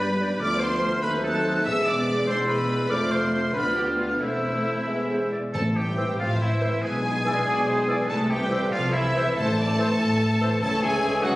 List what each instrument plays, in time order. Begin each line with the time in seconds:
Already playing: double bass section G1, cello section G2, viola section G3 D4, french horn section G3 D4, oboe B4, violin section B4 B5
0.01 flute G6
0.20 bassoon G3, clarinet D5, flute G6
0.40 cello section D2, double bass section D2, french horn section F3 B3, viola section F3 F4, bassoon A3, clarinet B4, oboe D5, violin section D5 D6, flute F6
0.60 oboe C5, violin section C5 C6
1.02 double bass section D#2, cello section D#2, french horn section F#3 C4, viola section F#3 D#4, bassoon A3, oboe B4, violin section B4 B5, clarinet C5, flute F#6
1.23 oboe A4, violin section A4 A5
1.65 double bass section E1, cello section E2, timpani E2, bassoon G#3, french horn section G#3 B3, viola section G#3 B3, clarinet B4, violin section E5 E6, oboe E5, flute E6
1.86 oboe D5, violin section D5 D6
2.27 double bass section E1, cello section E2, french horn section G#3 D4, bassoon G#3, viola section E4, oboe C5, violin section C5 C6, clarinet D5, flute E6
2.48 oboe B4, violin section B4 B5
2.90 double bass section F1, cello section F2, bassoon A3, viola section A3 C4, french horn section A3 F4, clarinet C5, oboe D5, violin section D5 D6, flute F6
3.12 oboe C5, violin section C5 C6
3.53 cello section D2, double bass section D2, bassoon B3, viola section B3 D4, french horn section B3 F4, oboe B4, violin section B4 B5, clarinet D5, flute F6
3.76 oboe G4, violin section G4 G5
3.99 oboe F4, violin section F4 F5
4.20 double bass section E1, cello section E2, bassoon A3, viola section A3 C4, french horn section C4 A4, oboe E4, violin section E4 E5, clarinet C5, flute E6
4.87 double bass section E1, cello section E2, bassoon G#3, viola section G#3 B3, french horn section B3 G#4, clarinet B4, flute E6
5.09 clarinet C5
5.31 clarinet D5
5.53 double bass section A1, cello section A2, timpani A2, french horn section A3, violin section C4 A5, oboe A4, trumpet A4
5.64 violin section A3 E4
5.74 french horn section G3, violin section C4 G5, trumpet G4, oboe G4
5.87 violin section A3 E4
5.97 bassoon E3, violin section C4, clarinet C5, flute E6
6.09 violin section A3 E4
6.19 double bass section A1, cello section A2, french horn section F3, violin section C4 F5, trumpet F4, oboe F4, viola section C5
6.30 violin section A3 E4
6.40 french horn section E3, violin section C4 E5, trumpet E4, oboe E4
6.49 violin section A3 E4
6.60 bassoon E3, violin section C4, clarinet C5, flute E6
6.72 violin section A3 E4
6.82 double bass section B1, cello section B2, french horn section G#3, violin section B3 E4 G#5, oboe G#4, trumpet G#4, viola section B4
6.93 violin section D4 G#4
7.04 violin section B3 E4, viola section G#4
7.15 violin section D4 G#4
7.25 bassoon E3, violin section B3 E4, viola section B4, clarinet D5, flute E6
7.36 violin section D4 G#4
7.45 double bass section B1, cello section B2, violin section B3 E4, viola section D5
7.56 violin section D4 G#4
7.67 violin section B3 E4, viola section C5
7.78 violin section D4 G#4
7.88 bassoon E3, violin section B3 E4, viola section B4, clarinet D5, flute E6
7.98 violin section D4 G#4
8.09 double bass section C2, cello section C3, violin section A3 E4 A5, french horn section A3, oboe A4, trumpet A4
8.18 violin section C4 A4
8.30 french horn section G3, violin section A3 E4 G5, trumpet G4, oboe G4
8.42 violin section C4 A4
8.50 bassoon E3, violin section A3 E4, clarinet C5, flute E6
8.61 violin section C4 A4
8.71 double bass section C2, cello section C3, french horn section F3, violin section A3 E4 F5, oboe F4, trumpet F4, viola section A4
8.84 violin section C4 A4
8.93 french horn section E3, violin section A3 E4 E5, oboe E4, trumpet E4
9.05 violin section C4 A4
9.15 bassoon E3, violin section A3 E4, clarinet C5, flute E6
9.26 violin section C4 A4
9.35 double bass section A1, cello section A2, violin section A3 E4 A5, french horn section A3, oboe A4, trumpet A4, viola section C5
9.39 timpani A2
9.45 violin section C4 A4
9.56 violin section A3 E4, viola section D5
9.67 violin section C4 A4
9.77 bassoon E3, violin section A3 E4, clarinet C5, viola section C5, flute E6
9.88 violin section C4 A4
10.00 double bass section A1, cello section A2, violin section A3 E4, viola section A4
10.09 violin section C4 A4
10.20 violin section A3 E4
10.29 violin section C4 A4
10.40 bassoon E3, violin section A3 E4, clarinet C5, flute E6
10.51 violin section C4 A4
10.60 double bass section C#2, cello section C#3, bassoon E3, french horn section A3, violin section C#4 E4 A5, oboe A4, trumpet A4, clarinet C#5, flute E6
10.82 double bass section C#2, cello section C#3, french horn section G#3, violin section C#4 E4 G#5, oboe G#4, trumpet G#4
11.01 double bass section C#2, cello section C#3, violin section C#4 E4
11.21 double bass section C#2, cello section C#3, french horn section F#3, violin section C#4 E4 F#5, oboe F#4, trumpet F#4